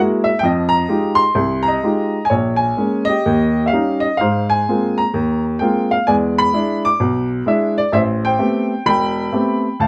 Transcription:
upright piano
Already playing: G#3 A#3 E4 F#4 A#4
0.24 E5
0.39 F2 F3 G5
0.45 D#5
0.69 A#5
0.88 G#3 D#4 F4 G4
1.15 C6
1.35 C2
1.63 A#5
1.68 D#5
1.83 G#3 D#4 F4 G4
2.25 G#5
2.30 A#1 C#5
2.56 G#5
2.77 G#3 A#3 C#4
3.05 D#5
3.09 G4
3.26 D#2
3.66 E5 F5
3.73 G3 C#4 D#4
4.00 D#5
4.17 G#2 C5 F5
4.50 G#5
4.69 G#3 A#3 C4 F4
4.98 A#5
5.14 D#2
5.59 G#3 A#3 C4 F4 G5
5.91 F5
6.07 E2 G#3 D5 G#5
6.38 B5
6.53 G#3 D4 E4
6.85 D6
7.00 B1
7.46 G#3 D4 E4 E5
7.78 D5
7.92 A1 C5 E5
8.25 C5 G5
8.39 A3 B3 C4 G4
8.86 E1 G5 B5
9.33 A3 B3 C4 G4
9.80 D2 F5 A5

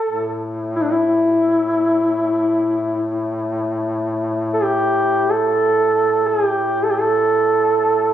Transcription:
duduk
Already playing: A4
0.04 A2
0.76 E4
0.83 D4
0.92 E4
4.54 A4
4.63 G4
5.30 A4
6.27 G#4
6.46 G4
6.83 A4
6.90 G4
6.99 A4

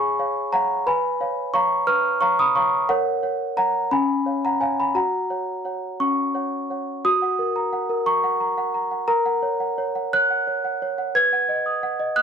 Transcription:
celesta
Already playing: G#4 C#5 F5 G#5 B5 C#6
0.19 C#5 F5
0.52 C#5 F5 F#5 A#5
0.87 B4 G#5 B5
1.21 C#5 F5
1.54 C#5 F5 A#5 C#6
1.87 B4 C#6 F6
2.21 C#5 F5 A#5 C#6
2.39 B5 D#6
2.56 C#5 F5 A#5 C#6
2.89 A#4 C#5 F#5
3.23 C#5 F#5
3.57 C#5 F#5 A#5
3.91 C#4 G#5 B5
4.26 C#5 F5
4.45 F#5 A#5
4.61 C#5 F5 G#5
4.80 G#5 B5
4.95 F#4 F#5 A#5
5.30 C#5 F#5
5.65 C#5 F#5
6.00 C#4 C#6
6.34 C#5 F#5
6.70 C#5 F#5
7.05 F#4 D#6
7.22 F#5
7.39 A#4
7.56 A#5
7.73 F#5
7.89 A#4
8.06 A#5 C#6
8.24 F#5
8.40 A#5
8.58 F#5
8.74 A#5
8.91 F#5
9.08 A#4 A#5
9.26 F#5
9.43 C#5
9.60 F#5
9.78 C#5
9.95 F#5
10.13 C#5 F#6
10.30 F#5
10.47 C#5
10.65 F#5
10.82 C#5
10.98 F#5
11.15 B4 G#6
11.33 F#5
11.49 D#5
11.66 D#6
11.83 F#5
12.00 D#5
12.16 D#6 F#6

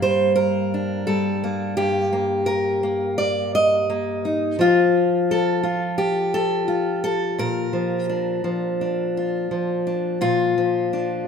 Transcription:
steel-string acoustic guitar
Already playing: G2 A#3
0.02 G3 C5
0.36 A#4
0.74 D4
1.07 G3 A4
1.44 A#3
1.77 G2 G4
2.13 A#3
2.46 A#4
2.83 A#3
3.18 D5
3.55 D#5
3.90 A#3
4.25 D#4
4.59 F3 F4
5.31 A4
5.63 F4
5.98 G4
6.34 A4
6.68 F4
7.04 A4
7.38 A#2 A#4
7.73 F3
8.09 D4
8.44 F3
8.81 D4
9.17 F4
9.51 F3
9.87 D4
10.21 A#2 F4
10.58 F3
10.93 D4

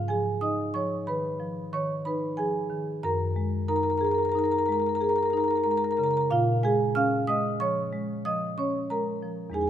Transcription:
marimba
Already playing: G#2
0.08 F3 G#4 G#5
0.41 D#4 D#5 D#6
0.74 F3 C#5 C#6
1.07 D#3 B4 B5
1.40 F3
1.73 D#3 C#5 C#6
2.05 D#4 B4 B5
2.37 F3 G#4 G#5
2.70 D#3
3.03 F#2 A#4 A#5
3.36 G#3
3.68 D#4 A#4 A#5
3.76 A#4 A#5
3.83 A#4 A#5
3.90 A#4 A#5
3.98 G#4 A#4 A#5
4.04 A#4 A#5
4.11 A#4 A#5
4.18 A#5
4.23 A#4 A#5
4.29 A#4 A#5
4.35 D#4 A#4 A#5
4.44 A#4 A#5
4.51 A#4 A#5
4.58 A#4 A#5
4.66 G#3 A#4 A#5
4.72 A#4 A#5
4.80 A#4 A#5
4.86 A#4 A#5
4.95 A#4 A#5
5.01 G#4 A#4 A#5
5.09 A#4 A#5
5.16 A#4 A#5
5.23 A#4 A#5
5.30 D#4 A#4 A#5
5.37 A#4 A#5
5.44 A#4 A#5
5.51 A#5
5.55 A#4 A#5
5.64 G#3 A#4 A#5
5.71 A#4 A#5
5.77 A#4 A#5
5.84 A#4 A#5
5.91 A#4 A#5
5.97 C#3 A#4 A#5
6.04 A#4 A#5
6.11 A#4 A#5
6.17 A#4 A#5
6.30 A#2 F4 F5
6.63 G#3 G#4 G#5
6.95 C#4 F5 F6
7.27 G#3 D#5 D#6
7.60 F3 C#5 C#6
7.93 G#3
8.25 F3 D#5 D#6
8.58 C#4 C#5 C#6
8.90 G#3 A#4 A#5
9.22 F3
9.50 E2 G#3 D#4
9.54 G#4 G#5
9.61 G#4 G#5

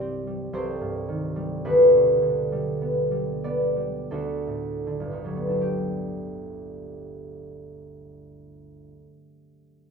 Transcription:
harp
Already playing: C2 G2 E3 G3 G4 C5 D5 E5
0.01 C4
0.27 G3
0.53 C2 G4 A4 C5
0.81 G2
1.08 D#3
1.36 G3
1.65 D2 D4 G4 B4
1.94 B2
2.22 D3
2.52 G3
2.81 B3
3.11 G3
3.44 B3 D5
3.76 G3
4.11 D2 D4 F#4 A4
4.47 A2
4.87 D3
5.00 G1
5.12 D2
5.24 F#3 G3
5.36 B3
5.49 D4
5.61 G4

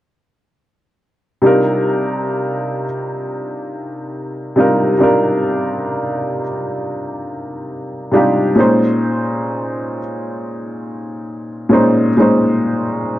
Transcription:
upright piano
1.42 C3 G3 D4 D#4
1.46 F4 A#4
4.56 C3 G3 D4 D#4 F4
4.60 A#4
4.98 C3 G3 D4 D#4
5.03 F4 A#4
8.12 C3 G3 D4 D#4 F4
8.17 G4
8.55 A#2 G#3 C#4 D#4
8.60 C5
11.69 A#2 G#3 C#4 D#4
11.74 C5
12.17 A#2 G#3 C#4 D#4
12.22 C5

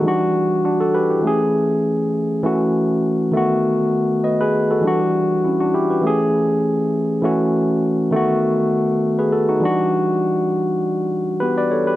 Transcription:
tine electric piano
Already playing: D#4
0.02 E3 G3 D4
0.08 F#4
0.65 D4 F#4
0.80 F#4 A4
0.94 G4 B4
1.10 E4 G4
1.21 E3 A3
1.25 C#4 G#4
2.43 E3 A3 C#4 F#4
3.31 D#3 A3 B3
3.37 F#4
4.24 B4 D#5
4.41 G#4 B4
4.71 F#4 A4
4.82 E3 G3 D4
4.87 F#4
5.44 C#4 E4
5.61 D4 F#4
5.74 E4 G4
5.90 G4 B4
6.01 E3 A3 C#4
6.07 G#4
7.22 E3 A3 C#4 F#4
8.11 D#3 A3 B3
8.16 F#4
9.19 G#4 B4
9.32 F#4 A4
9.49 D#4 F#4
9.60 E3 G3 D4
9.65 F#4
11.40 B3 G4 B4
11.58 B4 D5
11.71 A4 C#5
11.87 G4 B4

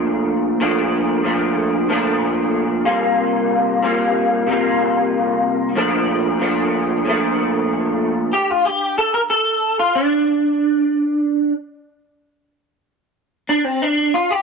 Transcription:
clean electric guitar
Already playing: A#2 F3 A3 D4
0.60 A#2 F3 A3 D4
1.24 A#2 F3 A3 D4
1.89 A#2 F3 A3 D4
2.85 C3 G3 A#3 F4
3.83 C3 G3 A#3 F4
4.47 C3 G3
4.51 A#3 F4
5.76 A#2 F3 A3 D4
6.40 A#2 F3 A3 D4
7.05 A#2 F3
7.09 A3 D4
8.33 G4
8.50 F4
8.65 G4
8.98 A4
9.14 A#4
9.30 A4
9.79 F4
9.95 D4
13.49 D4
13.64 C4
13.82 D4
14.14 F4
14.31 G4

